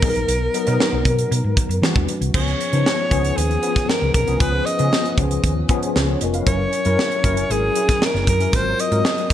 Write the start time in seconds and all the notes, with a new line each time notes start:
Already playing: A#4
0.02 B1 F#3 B3 D#4 G#4, kick, open hi-hat
0.09 A#4
0.16 A#1, closed hi-hat
0.28 B1, closed hi-hat
0.54 F#3 B3 D#4 A#4, closed hi-hat
0.66 B2 F#3 B3 D#4 A#4, closed hi-hat
0.80 snare
0.93 B1
1.05 B2, kick, closed hi-hat
1.19 closed hi-hat
1.31 B2, closed hi-hat
1.44 G#2
1.57 kick, closed hi-hat
1.69 F#2, closed hi-hat
1.82 E3 G3 D4 F#4, snare
1.95 E2, kick
2.08 closed hi-hat
2.21 C2, closed hi-hat
2.34 C#2 F3 B3 C#4 G#4 C#5, kick, crash
2.48 closed hi-hat
2.61 closed hi-hat
2.72 C#3 F3 B3 C#4 D#4, closed hi-hat
2.86 snare
3.10 C#2 F3 B3 C#4 G#4, kick, closed hi-hat
3.25 closed hi-hat
3.37 D#2 G#4, closed hi-hat
3.51 closed hi-hat
3.62 F3 B3 C#4 G#4, closed hi-hat
3.76 kick, snare, closed hi-hat
3.89 A#4, snare
4.02 C#2
4.14 B1 A#4, kick, closed hi-hat
4.27 C2 F3 B3 C#4 G#4, closed hi-hat
4.40 C#2 F3 B3 C#4 G#4 B4, kick, closed hi-hat
4.66 D#5, closed hi-hat
4.79 C#3 F3 B3 C#4 G#4, closed hi-hat
4.93 snare
5.06 closed hi-hat
5.18 C#2 F3 B3 C#4 G#4, kick, closed hi-hat
5.31 closed hi-hat
5.44 D#2, kick, closed hi-hat
5.69 F3 B3 C#4 G#4, kick, closed hi-hat
5.83 closed hi-hat
5.95 C#2 F4 B4, snare
6.08 G#4 C#5
6.21 F1 A#4 D#5, closed hi-hat
6.34 B4 F5, closed hi-hat
6.46 F#1 F#3 C#4 E4 A#4 C#5, kick, closed hi-hat
6.73 closed hi-hat
6.85 F#2 F#3 C#4 E4 A#4, closed hi-hat
6.99 snare
7.12 closed hi-hat
7.23 F#1 F#3 C#4 E4 A#4, kick, closed hi-hat
7.37 closed hi-hat
7.50 G#1 G#4, closed hi-hat
7.75 F#3 C#4 E4 G#4, closed hi-hat
7.89 kick, snare, closed hi-hat
8.02 A#4, snare
8.15 F#1, snare
8.27 F#2 A#4, kick, closed hi-hat
8.40 F#3 C#4 E4 A#4, closed hi-hat
8.52 G#1 F#3 C4 F4 A#4 C5, kick, closed hi-hat
8.79 D#5, closed hi-hat
8.91 G#2 F#3 C4 F4 A#4, closed hi-hat
9.05 snare
9.18 closed hi-hat
9.30 A#1 F#3, kick